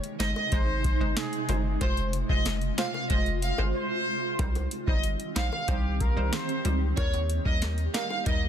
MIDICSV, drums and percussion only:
0, 0, Header, 1, 2, 480
1, 0, Start_track
1, 0, Key_signature, -3, "minor"
1, 0, Tempo, 645161
1, 1347, Time_signature, 4, 2, 24, 8
1, 6314, End_track
2, 0, Start_track
2, 0, Title_t, "Drums"
2, 27, Note_on_c, 9, 42, 56
2, 101, Note_off_c, 9, 42, 0
2, 149, Note_on_c, 9, 42, 83
2, 150, Note_on_c, 9, 38, 116
2, 153, Note_on_c, 9, 60, 57
2, 223, Note_off_c, 9, 42, 0
2, 224, Note_off_c, 9, 38, 0
2, 227, Note_off_c, 9, 60, 0
2, 269, Note_on_c, 9, 60, 71
2, 344, Note_off_c, 9, 60, 0
2, 386, Note_on_c, 9, 42, 80
2, 388, Note_on_c, 9, 36, 94
2, 460, Note_off_c, 9, 42, 0
2, 462, Note_off_c, 9, 36, 0
2, 628, Note_on_c, 9, 36, 95
2, 628, Note_on_c, 9, 42, 73
2, 702, Note_off_c, 9, 42, 0
2, 703, Note_off_c, 9, 36, 0
2, 868, Note_on_c, 9, 38, 123
2, 868, Note_on_c, 9, 42, 73
2, 942, Note_off_c, 9, 38, 0
2, 942, Note_off_c, 9, 42, 0
2, 988, Note_on_c, 9, 42, 57
2, 1063, Note_off_c, 9, 42, 0
2, 1106, Note_on_c, 9, 42, 74
2, 1111, Note_on_c, 9, 60, 75
2, 1111, Note_on_c, 9, 61, 76
2, 1181, Note_off_c, 9, 42, 0
2, 1186, Note_off_c, 9, 60, 0
2, 1186, Note_off_c, 9, 61, 0
2, 1347, Note_on_c, 9, 36, 112
2, 1347, Note_on_c, 9, 42, 74
2, 1349, Note_on_c, 9, 60, 81
2, 1421, Note_off_c, 9, 42, 0
2, 1422, Note_off_c, 9, 36, 0
2, 1423, Note_off_c, 9, 60, 0
2, 1468, Note_on_c, 9, 42, 56
2, 1542, Note_off_c, 9, 42, 0
2, 1586, Note_on_c, 9, 42, 80
2, 1661, Note_off_c, 9, 42, 0
2, 1707, Note_on_c, 9, 36, 104
2, 1781, Note_off_c, 9, 36, 0
2, 1827, Note_on_c, 9, 42, 86
2, 1829, Note_on_c, 9, 38, 118
2, 1901, Note_off_c, 9, 42, 0
2, 1904, Note_off_c, 9, 38, 0
2, 1945, Note_on_c, 9, 42, 56
2, 2020, Note_off_c, 9, 42, 0
2, 2068, Note_on_c, 9, 42, 78
2, 2069, Note_on_c, 9, 38, 116
2, 2073, Note_on_c, 9, 60, 54
2, 2142, Note_off_c, 9, 42, 0
2, 2143, Note_off_c, 9, 38, 0
2, 2148, Note_off_c, 9, 60, 0
2, 2190, Note_on_c, 9, 60, 69
2, 2264, Note_off_c, 9, 60, 0
2, 2306, Note_on_c, 9, 42, 77
2, 2308, Note_on_c, 9, 36, 97
2, 2380, Note_off_c, 9, 42, 0
2, 2382, Note_off_c, 9, 36, 0
2, 2427, Note_on_c, 9, 42, 49
2, 2502, Note_off_c, 9, 42, 0
2, 2548, Note_on_c, 9, 42, 72
2, 2622, Note_off_c, 9, 42, 0
2, 2665, Note_on_c, 9, 60, 86
2, 2739, Note_off_c, 9, 60, 0
2, 3267, Note_on_c, 9, 36, 111
2, 3267, Note_on_c, 9, 42, 77
2, 3269, Note_on_c, 9, 60, 80
2, 3341, Note_off_c, 9, 42, 0
2, 3342, Note_off_c, 9, 36, 0
2, 3344, Note_off_c, 9, 60, 0
2, 3388, Note_on_c, 9, 42, 55
2, 3392, Note_on_c, 9, 60, 69
2, 3463, Note_off_c, 9, 42, 0
2, 3466, Note_off_c, 9, 60, 0
2, 3507, Note_on_c, 9, 42, 80
2, 3581, Note_off_c, 9, 42, 0
2, 3627, Note_on_c, 9, 36, 105
2, 3701, Note_off_c, 9, 36, 0
2, 3746, Note_on_c, 9, 42, 86
2, 3821, Note_off_c, 9, 42, 0
2, 3866, Note_on_c, 9, 42, 57
2, 3940, Note_off_c, 9, 42, 0
2, 3988, Note_on_c, 9, 42, 78
2, 3989, Note_on_c, 9, 38, 120
2, 3993, Note_on_c, 9, 60, 56
2, 4063, Note_off_c, 9, 42, 0
2, 4064, Note_off_c, 9, 38, 0
2, 4068, Note_off_c, 9, 60, 0
2, 4110, Note_on_c, 9, 60, 72
2, 4185, Note_off_c, 9, 60, 0
2, 4226, Note_on_c, 9, 42, 75
2, 4228, Note_on_c, 9, 36, 99
2, 4300, Note_off_c, 9, 42, 0
2, 4302, Note_off_c, 9, 36, 0
2, 4468, Note_on_c, 9, 36, 96
2, 4468, Note_on_c, 9, 42, 70
2, 4542, Note_off_c, 9, 36, 0
2, 4542, Note_off_c, 9, 42, 0
2, 4707, Note_on_c, 9, 38, 126
2, 4707, Note_on_c, 9, 42, 73
2, 4781, Note_off_c, 9, 38, 0
2, 4782, Note_off_c, 9, 42, 0
2, 4828, Note_on_c, 9, 42, 56
2, 4903, Note_off_c, 9, 42, 0
2, 4947, Note_on_c, 9, 42, 77
2, 4952, Note_on_c, 9, 60, 77
2, 4952, Note_on_c, 9, 61, 80
2, 5021, Note_off_c, 9, 42, 0
2, 5027, Note_off_c, 9, 60, 0
2, 5027, Note_off_c, 9, 61, 0
2, 5188, Note_on_c, 9, 36, 115
2, 5188, Note_on_c, 9, 42, 76
2, 5189, Note_on_c, 9, 60, 79
2, 5262, Note_off_c, 9, 36, 0
2, 5263, Note_off_c, 9, 42, 0
2, 5263, Note_off_c, 9, 60, 0
2, 5309, Note_on_c, 9, 42, 56
2, 5311, Note_on_c, 9, 60, 69
2, 5384, Note_off_c, 9, 42, 0
2, 5386, Note_off_c, 9, 60, 0
2, 5428, Note_on_c, 9, 42, 80
2, 5502, Note_off_c, 9, 42, 0
2, 5547, Note_on_c, 9, 36, 104
2, 5621, Note_off_c, 9, 36, 0
2, 5667, Note_on_c, 9, 42, 83
2, 5670, Note_on_c, 9, 38, 124
2, 5742, Note_off_c, 9, 42, 0
2, 5744, Note_off_c, 9, 38, 0
2, 5787, Note_on_c, 9, 42, 54
2, 5861, Note_off_c, 9, 42, 0
2, 5910, Note_on_c, 9, 38, 116
2, 5910, Note_on_c, 9, 42, 85
2, 5913, Note_on_c, 9, 60, 59
2, 5984, Note_off_c, 9, 42, 0
2, 5985, Note_off_c, 9, 38, 0
2, 5987, Note_off_c, 9, 60, 0
2, 6030, Note_on_c, 9, 60, 71
2, 6104, Note_off_c, 9, 60, 0
2, 6147, Note_on_c, 9, 42, 77
2, 6148, Note_on_c, 9, 36, 98
2, 6221, Note_off_c, 9, 42, 0
2, 6222, Note_off_c, 9, 36, 0
2, 6314, End_track
0, 0, End_of_file